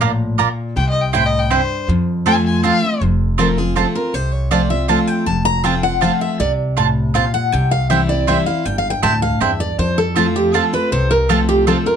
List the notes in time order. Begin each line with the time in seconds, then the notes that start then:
Already playing: A#1 A#2
0.01 A2 A#3 F4 D5 A#5
0.38 A#2 A#3 F4 D5 A#5
0.76 C2 C3 G5
0.89 D#5
1.01 G5
1.13 A2 C4 E4 C5 G5
1.26 D#5
1.39 G5
1.50 G2 C4 E4 C5 G5
1.88 F2
2.26 F3 A3 C4 F4 C5 G#5 A5
2.45 G#5
2.63 F3 A3 C4 F4 C5 F5 A5
2.83 C4 F4
3.01 F1 F2
3.38 F3 A3 C4 F4 A#4 C5 A5
3.57 C4 F4 G#4
3.76 F3 A3 C4 F4 A4 C5 A5
3.95 C4 F4 A#4
4.14 C2 C3 C5
4.33 C#5
4.51 F3 A3 C4 F4 C5 D5 A5
4.70 C4 F4 E5
4.88 F3 A3 C4 F4 C5 F5 A5
5.08 G5
5.26 F1 F2 A5
5.45 A#5
5.64 F3 A3 C4 F4 C5 G5 A5
5.83 C4 F4 F#5
6.01 F3 A3 C4 F4 C5 F5 A5
6.21 E5
6.39 C2 C3 D5
6.77 A2 C4 F4 C5 A5
7.14 A#2 C4 F4 C5 F5 A5
7.34 F#5
7.52 C2 C3 G5
7.71 F5
7.90 E3 G3 C4 E4 C5 E5 G5
8.09 C4 E4 D5
8.27 E3 G3 C4 E4 C5 E5 G5
8.46 C4 E4 F5
8.65 G1 G2 G5
8.78 F5
8.90 G5
9.03 D2 A2 C4 E4 C5 G5 A5
9.22 F5
9.40 E2 G2 C4 E4 C5 E5 G5
9.60 D5
9.78 F2 C5
9.98 A4
10.16 F3 A3 C4 F4 C5 A5
10.36 G4
10.54 F3 A3 C4 F4 A4 C5 A5
10.73 C4 F4 B4
10.92 C2 C3 C5
11.11 A#4
11.29 F3 A3 C4 F4 A4 C5 A5
11.49 G4
11.67 F3 A3 C4 F4 A4 C5 A5
11.86 C4 F4 A#4